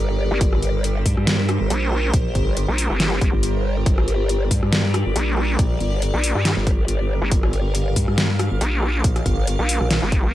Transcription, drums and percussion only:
0.41 kick loud
0.41 closed hi-hat medium
0.53 cross-stick medium
0.62 closed hi-hat medium
0.84 closed hi-hat medium
1.06 kick medium
1.06 open hi-hat medium
1.17 cross-stick soft
1.27 snare loud
1.27 closed hi-hat medium
1.49 cross-stick medium
1.49 closed hi-hat medium
1.70 closed hi-hat medium
1.92 cross-stick medium
2.14 kick loud
2.14 closed hi-hat medium
2.35 kick medium
2.35 closed hi-hat medium
2.57 closed hi-hat medium
2.78 open hi-hat medium
2.90 cross-stick medium
3.00 snare loud
3.00 closed hi-hat medium
3.21 kick loud
3.21 closed hi-hat medium
3.43 closed hi-hat medium
3.86 kick loud
3.86 closed hi-hat medium
3.98 cross-stick medium
4.08 closed hi-hat soft
4.29 closed hi-hat medium
4.51 kick medium
4.51 open hi-hat medium
4.63 cross-stick medium
4.73 snare loud
4.73 closed hi-hat medium
4.94 cross-stick medium
4.94 closed hi-hat medium
5.16 closed hi-hat medium
5.37 cross-stick medium
5.59 kick loud
5.59 closed hi-hat medium
5.80 closed hi-hat soft
6.02 closed hi-hat medium
6.24 open hi-hat medium
6.35 cross-stick medium
6.45 snare loud
6.45 closed hi-hat medium
6.67 kick loud
6.67 closed hi-hat medium
6.88 closed hi-hat medium
7.32 kick loud
7.32 closed hi-hat medium
7.43 cross-stick medium
7.53 closed hi-hat soft
7.75 closed hi-hat medium
7.96 kick medium
7.96 open hi-hat medium
8.08 cross-stick medium
8.18 snare loud
8.18 closed hi-hat medium
8.39 cross-stick medium
8.39 closed hi-hat soft
8.61 closed hi-hat medium
8.83 cross-stick medium
9.04 kick loud
9.04 closed hi-hat medium
9.16 cross-stick medium
9.16 closed hi-hat soft
9.26 kick medium
9.26 closed hi-hat medium
9.47 closed hi-hat medium
9.69 open hi-hat loud
9.81 cross-stick medium
9.91 snare loud
9.91 closed hi-hat medium
10.12 kick loud
10.12 closed hi-hat medium

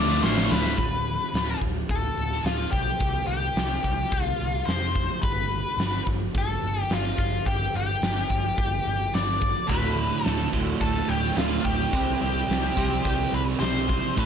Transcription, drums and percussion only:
0.24 snare medium
0.38 snare medium
0.52 snare loud
0.66 snare medium
0.78 kick loud
0.78 open hi-hat medium
1.07 open hi-hat soft
1.34 snare medium
1.34 open hi-hat medium
1.62 kick medium
1.62 open hi-hat soft
1.89 kick medium
1.89 open hi-hat medium
2.18 open hi-hat soft
2.32 snare soft
2.45 snare medium
2.45 open hi-hat medium
2.73 kick medium
2.73 open hi-hat soft
3.00 kick medium
3.00 open hi-hat medium
3.29 open hi-hat soft
3.56 snare loud
3.56 open hi-hat medium
3.84 kick medium
3.84 open hi-hat soft
4.12 kick loud
4.12 open hi-hat medium
4.40 open hi-hat soft
4.68 snare medium
4.68 open hi-hat medium
4.95 kick medium
4.95 open hi-hat soft
5.23 kick loud
5.23 open hi-hat medium
5.51 open hi-hat soft
5.79 snare loud
5.79 open hi-hat medium
6.07 kick medium
6.07 open hi-hat soft
6.34 kick medium
6.34 open hi-hat medium
6.62 open hi-hat soft
6.90 snare medium
6.90 open hi-hat medium
7.18 kick medium
7.18 open hi-hat soft
7.46 kick loud
7.46 open hi-hat medium
7.74 open hi-hat soft
8.02 snare medium
8.02 open hi-hat medium
8.30 kick medium
8.30 open hi-hat soft
8.57 kick loud
8.57 open hi-hat medium
8.86 open hi-hat soft
9.14 snare medium
9.14 open hi-hat medium
9.29 snare soft
9.42 kick medium
9.42 open hi-hat soft
9.69 kick loud
9.69 open hi-hat medium
9.97 open hi-hat soft
10.25 snare medium
10.25 open hi-hat medium
10.53 kick medium
10.53 open hi-hat soft
10.81 kick medium
10.81 open hi-hat medium
11.09 open hi-hat soft
11.24 snare soft
11.37 snare loud
11.37 open hi-hat medium
11.65 kick medium
11.65 open hi-hat soft
11.93 kick loud
11.93 open hi-hat medium
12.22 open hi-hat soft
12.50 snare medium
12.50 open hi-hat medium
12.77 kick medium
12.77 open hi-hat soft
13.05 kick medium
13.05 open hi-hat medium
13.34 open hi-hat soft
13.49 snare soft
13.61 snare loud
13.61 open hi-hat medium
13.76 snare soft
13.89 kick medium
13.89 open hi-hat medium
14.17 kick loud
14.17 open hi-hat medium

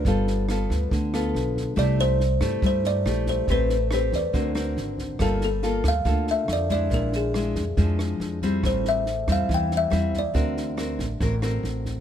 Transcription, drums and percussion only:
0.05 kick medium
0.05 snare soft
0.27 snare soft
0.49 cross-stick medium
0.49 snare soft
0.70 kick soft
0.70 snare soft
0.91 kick medium
0.91 snare soft
1.14 cross-stick soft
1.14 snare soft
1.35 snare soft
1.56 kick soft
1.56 snare soft
1.77 kick soft
1.77 cross-stick soft
1.77 snare soft
1.99 snare soft
2.20 snare soft
2.41 kick soft
2.41 cross-stick medium
2.41 snare soft
2.62 kick medium
2.62 snare soft
2.84 snare soft
3.06 cross-stick medium
3.06 snare soft
3.26 kick soft
3.26 snare soft
3.47 kick medium
3.47 snare soft
3.69 snare soft
3.91 cross-stick medium
3.91 snare soft
4.12 kick soft
4.12 snare soft
4.34 kick medium
4.34 snare soft
4.55 cross-stick soft
4.55 snare soft
4.77 snare soft
4.98 kick soft
4.98 snare soft
5.19 kick soft
5.19 cross-stick medium
5.19 snare soft
5.41 snare soft
5.63 snare soft
5.84 kick soft
5.84 cross-stick medium
5.84 snare soft
6.05 kick medium
6.05 snare soft
6.27 snare soft
6.48 cross-stick medium
6.48 snare soft
6.69 kick soft
6.69 snare soft
6.90 kick soft
6.90 snare soft
7.13 snare soft
7.34 cross-stick medium
7.34 snare soft
7.55 kick soft
7.55 snare soft
7.77 kick medium
7.77 snare soft
7.99 cross-stick soft
7.99 snare soft
8.20 snare soft
8.42 kick soft
8.42 snare soft
8.63 kick medium
8.63 cross-stick soft
8.63 snare soft
8.85 snare soft
9.06 snare soft
9.28 kick soft
9.28 cross-stick medium
9.28 snare soft
9.49 kick medium
9.49 snare soft
9.71 snare soft
9.92 cross-stick medium
9.92 snare soft
10.13 kick soft
10.13 snare soft
10.35 kick medium
10.35 snare soft
10.57 snare soft
10.78 cross-stick medium
10.78 snare soft
10.99 kick soft
10.99 snare soft
11.20 kick soft
11.20 snare soft
11.42 cross-stick soft
11.42 snare soft
11.64 snare soft
11.85 kick soft
11.85 snare soft

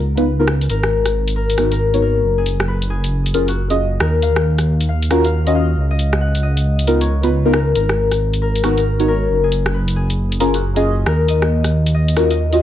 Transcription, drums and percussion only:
0.17 closed hi-hat soft
0.48 cross-stick medium
0.61 closed hi-hat soft
0.70 closed hi-hat medium
0.83 cross-stick medium
1.06 cross-stick soft
1.06 closed hi-hat medium
1.28 closed hi-hat medium
1.50 closed hi-hat medium
1.58 cross-stick soft
1.58 closed hi-hat medium
1.72 closed hi-hat soft
1.94 closed hi-hat soft
2.46 closed hi-hat medium
2.60 cross-stick medium
2.82 closed hi-hat medium
3.04 closed hi-hat medium
3.26 closed hi-hat medium
3.34 closed hi-hat medium
3.48 closed hi-hat soft
3.70 closed hi-hat soft
4.00 cross-stick medium
4.22 closed hi-hat medium
4.36 cross-stick medium
4.58 cross-stick soft
4.58 closed hi-hat medium
4.81 closed hi-hat medium
5.03 closed hi-hat medium
5.11 cross-stick medium
5.11 closed hi-hat medium
5.25 closed hi-hat soft
5.47 closed hi-hat soft
5.99 closed hi-hat medium
6.13 cross-stick medium
6.35 closed hi-hat medium
6.57 closed hi-hat medium
6.79 closed hi-hat medium
6.87 closed hi-hat medium
7.01 closed hi-hat soft
7.23 closed hi-hat soft
7.54 cross-stick medium
7.75 closed hi-hat medium
7.89 cross-stick soft
8.12 cross-stick soft
8.12 closed hi-hat medium
8.33 closed hi-hat medium
8.56 closed hi-hat medium
8.64 cross-stick soft
8.64 closed hi-hat medium
8.78 closed hi-hat soft
9.00 closed hi-hat soft
9.52 closed hi-hat medium
9.66 cross-stick soft
9.88 closed hi-hat medium
10.10 closed hi-hat medium
10.32 closed hi-hat medium
10.40 closed hi-hat medium
10.54 closed hi-hat soft
10.76 closed hi-hat soft
11.06 cross-stick medium
11.28 closed hi-hat medium
11.42 cross-stick medium
11.64 cross-stick soft
11.64 closed hi-hat medium
11.86 closed hi-hat medium
12.08 closed hi-hat medium
12.17 cross-stick soft
12.17 closed hi-hat medium
12.30 closed hi-hat medium
12.53 closed hi-hat soft

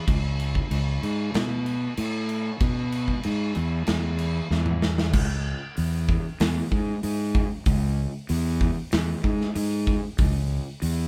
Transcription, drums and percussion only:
0.08 kick loud
0.08 crash medium
0.40 crash medium
0.55 kick medium
0.71 crash medium
1.03 crash medium
1.34 snare loud
1.34 crash medium
1.66 crash soft
1.97 crash medium
2.29 crash medium
2.60 kick loud
2.60 crash medium
2.92 crash medium
3.08 kick medium
3.23 crash medium
3.55 crash medium
3.87 snare medium
3.87 crash medium
4.19 crash medium
4.51 snare medium
4.66 mid tom medium
4.82 snare medium
4.98 snare medium
5.13 kick loud
5.13 crash loud
5.77 open hi-hat medium
6.09 kick medium
6.40 snare loud
6.40 open hi-hat medium
6.72 kick medium
7.03 open hi-hat medium
7.35 kick loud
7.66 kick loud
7.66 open hi-hat medium
8.29 open hi-hat medium
8.61 kick medium
8.92 snare loud
8.92 open hi-hat medium
9.24 kick medium
9.41 snare soft
9.56 open hi-hat medium
9.87 kick medium
10.18 kick loud
10.18 open hi-hat medium
10.82 open hi-hat medium

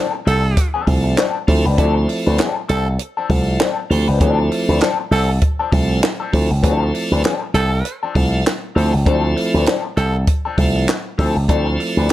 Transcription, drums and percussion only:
0.27 closed hi-hat medium
0.57 kick medium
0.57 closed hi-hat loud
0.87 kick medium
0.87 open hi-hat medium
1.17 snare loud
1.17 clap loud
1.17 closed hi-hat medium
1.48 kick loud
1.48 open hi-hat medium
1.78 kick loud
1.78 closed hi-hat medium
2.09 open hi-hat medium
2.38 snare loud
2.38 clap medium
2.38 closed hi-hat medium
2.69 closed hi-hat medium
2.99 closed hi-hat loud
3.30 kick medium
3.30 open hi-hat medium
3.60 snare loud
3.60 clap loud
3.60 closed hi-hat medium
3.91 open hi-hat medium
4.21 kick loud
4.21 closed hi-hat medium
4.52 open hi-hat medium
4.81 snare loud
4.81 clap medium
4.81 closed hi-hat medium
5.12 open hi-hat medium
5.41 kick medium
5.41 closed hi-hat loud
5.72 kick medium
5.72 open hi-hat medium
6.03 snare loud
6.03 clap loud
6.03 closed hi-hat medium
6.33 kick medium
6.33 open hi-hat medium
6.64 kick loud
6.64 closed hi-hat loud
6.95 open hi-hat medium
7.24 snare loud
7.24 clap loud
7.24 closed hi-hat medium
7.55 closed hi-hat medium
7.85 closed hi-hat medium
8.15 kick medium
8.15 open hi-hat medium
8.46 snare loud
8.46 clap loud
8.46 closed hi-hat medium
8.77 open hi-hat medium
9.06 kick loud
9.06 closed hi-hat medium
9.37 open hi-hat medium
9.66 snare loud
9.66 clap medium
9.66 closed hi-hat medium
9.98 closed hi-hat medium
10.27 kick loud
10.27 closed hi-hat medium
10.58 kick medium
10.58 open hi-hat medium
10.88 snare loud
10.88 clap loud
10.88 closed hi-hat medium
11.19 kick loud
11.19 open hi-hat medium
11.49 kick loud
11.49 closed hi-hat medium
11.80 open hi-hat medium
12.09 closed hi-hat medium

